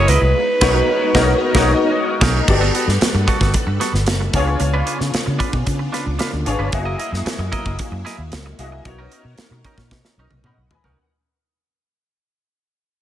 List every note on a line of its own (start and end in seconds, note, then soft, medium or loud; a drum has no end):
0.00 0.33 F#3 medium
0.00 0.37 G#3 medium
0.00 2.43 G#3 medium
0.00 0.37 A#3 medium
0.00 0.33 E4 medium
0.00 0.36 E4 medium
0.00 0.37 F#4 medium
0.00 0.37 G#4 medium
0.00 0.10 C#5 loud
0.00 0.37 C#5 medium
0.00 0.37 D#5 medium
0.08 0.19 C#2 medium
0.08 0.21 E4 medium
0.08 0.22 A#4 medium
0.08 1.95 B4 medium
0.08 0.21 D#5 medium
0.08 closed hi-hat medium
0.21 0.32 C2 medium
0.21 muted clean electric guitar stroke medium
0.35 2.45 B3 medium
0.35 2.45 D#4 medium
0.61 0.80 B1 loud
0.61 0.79 B3 loud
0.61 0.80 C#4 medium
0.61 0.79 D#4 medium
0.61 0.80 D#4 loud
0.61 0.79 F#4 loud
0.61 0.80 A#4 loud
0.61 0.79 B4 loud
0.61 0.80 C#5 medium
0.61 kick loud
0.61 snare loud
0.61 crash medium
1.14 1.33 B1 loud
1.14 1.33 B3 loud
1.14 1.34 C#4 loud
1.14 1.33 D#4 loud
1.14 1.33 F#4 loud
1.14 1.33 A#4 loud
1.14 1.33 C#5 loud
1.14 kick loud
1.14 snare loud
1.22 1.37 D#5 loud
1.54 1.73 B1 loud
1.54 1.72 B3 loud
1.54 1.74 C#4 loud
1.54 1.72 D#4 loud
1.54 1.73 D#4 loud
1.54 1.73 F#4 loud
1.54 1.73 A#4 medium
1.54 1.73 A#4 loud
1.54 1.73 C#5 loud
1.54 kick loud
1.54 snare loud
1.62 1.77 D#5 loud
2.21 2.39 B1 loud
2.21 2.39 C#4 loud
2.21 2.39 D#4 loud
2.21 2.40 A#4 loud
2.21 kick loud
2.21 snare loud
2.21 crash medium
2.48 2.69 G1 loud
2.48 4.32 G3 medium
2.48 3.25 B3 medium
2.48 3.25 F#4 medium
2.48 3.26 G4 medium
2.48 4.32 A4 medium
2.48 3.26 A4 medium
2.48 4.32 B4 loud
2.48 3.26 D5 medium
2.48 4.32 F#5 medium
2.48 muted clean electric guitar stroke soft
2.48 kick loud
2.48 crash loud
2.61 2.73 B3 medium
2.61 2.74 F#4 medium
2.61 2.75 A4 medium
2.75 2.87 B3 medium
2.75 2.88 F#4 medium
2.75 2.87 A4 medium
2.75 closed hi-hat medium
2.87 2.98 G2 medium
2.87 snare soft
3.01 muted clean electric guitar stroke soft
3.01 muted fingered electric bass stroke soft
3.01 snare loud
3.01 closed hi-hat medium
3.14 3.25 G2 loud
3.14 muted clean electric guitar stroke soft
3.27 3.40 B3 medium
3.27 3.40 F#4 loud
3.27 3.39 A4 loud
3.27 kick medium
3.27 closed hi-hat medium
3.40 3.51 G1 loud
3.40 3.53 B3 medium
3.40 3.53 F#4 medium
3.40 3.53 A4 medium
3.40 kick medium
3.40 snare soft
3.54 muted clean electric guitar stroke soft
3.54 muted fingered electric bass stroke medium
3.54 kick medium
3.54 closed hi-hat medium
3.67 3.77 G2 medium
3.67 muted clean electric guitar stroke medium
3.80 3.97 B3 medium
3.80 3.93 F#4 medium
3.80 3.93 A4 medium
3.80 snare soft
3.80 closed hi-hat medium
3.93 4.07 G1 medium
3.93 muted clean electric guitar stroke soft
3.93 snare soft
4.06 4.28 F#1 medium
4.06 muted clean electric guitar stroke medium
4.06 snare loud
4.06 closed hi-hat medium
4.21 muted clean electric guitar stroke soft
4.33 4.54 C#2 loud
4.33 6.70 C#3 medium
4.33 5.19 B3 medium
4.33 6.71 B3 medium
4.33 6.70 D4 medium
4.33 5.19 D4 medium
4.33 6.70 F4 medium
4.33 5.19 F4 medium
4.33 5.19 G#4 medium
4.33 5.20 C#5 loud
4.33 kick loud
4.33 closed hi-hat medium
4.47 muted clean electric guitar stroke soft
4.60 4.81 C#2 loud
4.60 muted clean electric guitar stroke soft
4.60 closed hi-hat medium
4.74 4.85 D4 medium
4.74 4.85 F4 medium
4.74 4.86 B4 medium
4.86 4.99 D4 medium
4.86 4.99 F4 medium
4.86 4.98 B4 medium
4.86 closed hi-hat medium
4.99 5.11 C#3 medium
4.99 muted clean electric guitar stroke soft
4.99 snare soft
5.14 muted fingered electric bass stroke soft
5.14 snare medium
5.14 closed hi-hat medium
5.26 5.37 C#3 loud
5.26 muted clean electric guitar stroke soft
5.39 5.56 D4 loud
5.39 5.53 F4 medium
5.39 5.51 B4 loud
5.39 kick medium
5.39 closed hi-hat medium
5.53 5.64 B2 medium
5.53 muted clean electric guitar stroke medium
5.53 kick loud
5.66 5.88 C#3 loud
5.66 muted clean electric guitar stroke soft
5.66 kick medium
5.66 closed hi-hat medium
5.79 muted clean electric guitar stroke medium
5.93 6.09 D4 medium
5.93 6.06 F4 medium
5.93 6.06 B4 medium
5.93 snare soft
5.93 closed hi-hat medium
6.06 6.17 C#2 medium
6.06 muted clean electric guitar stroke soft
6.19 6.36 D4 medium
6.19 6.32 F4 medium
6.19 6.31 B4 medium
6.19 snare loud
6.19 closed hi-hat medium
6.32 6.43 D2 medium
6.32 muted clean electric guitar stroke medium
6.45 6.57 G#1 loud
6.45 6.65 B3 medium
6.45 6.66 D4 medium
6.45 6.66 F4 medium
6.45 6.66 G#4 medium
6.45 6.66 C#5 loud
6.45 muted clean electric guitar stroke soft
6.45 closed hi-hat medium
6.59 6.70 G1 loud
6.59 6.73 D4 soft
6.59 6.72 F4 medium
6.59 6.72 B4 medium
6.72 6.93 F#1 loud
6.72 8.82 F#3 medium
6.72 8.83 A#3 medium
6.72 7.50 A#3 medium
6.72 8.83 E4 loud
6.72 7.50 E4 medium
6.72 7.51 F#4 medium
6.72 7.51 G#4 medium
6.72 7.51 D#5 medium
6.72 muted clean electric guitar stroke soft
6.72 kick loud
6.72 closed hi-hat medium
6.85 6.97 E4 medium
6.85 6.98 A#4 medium
6.85 6.99 D#5 medium
6.99 7.12 E4 medium
6.99 7.12 A#4 medium
6.99 7.11 D#5 medium
6.99 closed hi-hat medium
7.12 7.23 F#2 medium
7.12 muted clean electric guitar stroke soft
7.12 snare soft
7.25 muted fingered electric bass stroke soft
7.25 muted clean electric guitar stroke soft
7.25 snare loud
7.25 closed hi-hat medium
7.38 7.49 F#2 loud
7.38 muted clean electric guitar stroke soft
7.52 7.65 E4 medium
7.52 7.65 A#4 loud
7.52 7.64 D#5 loud
7.52 kick medium
7.52 closed hi-hat medium
7.65 7.76 F#1 medium
7.65 7.77 E4 medium
7.65 7.78 A#4 medium
7.65 7.78 D#5 medium
7.65 kick medium
7.79 muted clean electric guitar stroke soft
7.79 muted fingered electric bass stroke soft
7.79 kick loud
7.79 closed hi-hat loud
7.92 8.02 F#2 loud
7.92 muted clean electric guitar stroke soft
8.05 8.22 E4 medium
8.05 8.18 A#4 medium
8.05 8.17 D#5 loud
8.05 snare soft
8.05 closed hi-hat medium
8.18 8.33 D#2 medium
8.18 muted clean electric guitar stroke medium
8.32 8.53 C#2 medium
8.32 muted clean electric guitar stroke soft
8.32 snare loud
8.32 closed hi-hat medium
8.46 muted clean electric guitar stroke medium
8.58 8.79 C2 medium
8.58 8.78 A#3 medium
8.58 8.78 E4 medium
8.58 8.78 F#4 medium
8.58 8.78 G#4 medium
8.58 8.79 D#5 loud
8.58 closed hi-hat medium
8.72 muted clean electric guitar stroke medium
8.85 9.06 B1 loud
8.85 10.95 B3 medium
8.85 9.63 B3 medium
8.85 10.95 D#4 loud
8.85 9.63 D#4 medium
8.85 9.63 F#4 medium
8.85 10.95 A#4 medium
8.85 9.63 A#4 medium
8.85 9.63 C#5 medium
8.85 muted clean electric guitar stroke soft
8.85 kick loud
8.85 closed hi-hat medium
8.99 9.11 C#4 medium
8.99 9.12 D#4 medium
8.99 9.12 A#4 medium
9.12 9.25 C#4 medium
9.12 9.25 D#4 medium
9.12 9.24 A#4 medium
9.12 closed hi-hat medium
9.25 9.35 B2 medium
9.25 muted clean electric guitar stroke soft
9.38 muted fingered electric bass stroke soft
9.38 snare loud
9.38 closed hi-hat medium
9.51 9.61 B2 medium
9.51 muted clean electric guitar stroke soft
9.64 9.81 C#4 medium
9.64 9.78 D#4 loud
9.64 9.78 A#4 loud
9.64 kick medium
9.64 closed hi-hat medium
9.78 9.91 A#2 medium
9.78 muted clean electric guitar stroke soft
9.78 kick medium
9.78 snare soft
9.91 10.02 B2 loud
9.91 muted clean electric guitar stroke soft
9.91 kick loud
9.91 snare medium
10.05 muted clean electric guitar stroke soft
10.05 snare medium
10.17 10.28 B1 medium
10.17 10.35 C#4 medium
10.17 10.32 D#4 medium
10.17 10.31 A#4 medium
10.17 10.43 D#5 medium
10.31 10.41 B1 medium
10.31 muted clean electric guitar stroke soft
10.31 high tom medium
10.44 10.54 B2 medium
10.44 10.61 C#4 medium
10.44 10.58 D#4 medium
10.44 10.57 A#4 loud
10.44 10.70 D#5 medium
10.44 10.70 F#5 medium
10.44 10.70 B5 medium
10.44 mid tom medium
10.57 10.68 B1 medium
10.57 muted clean electric guitar stroke soft
10.71 10.84 B4 medium
10.71 10.84 G#5 medium
10.71 10.96 B5 medium
10.71 muted clean electric guitar stroke soft
10.71 floor tom loud
10.84 10.95 C2 medium
10.84 10.98 C#4 soft
10.84 10.98 D#4 medium
10.84 10.97 A#4 medium
10.84 11.10 A#4 medium
10.84 11.09 F#5 medium
10.84 floor tom medium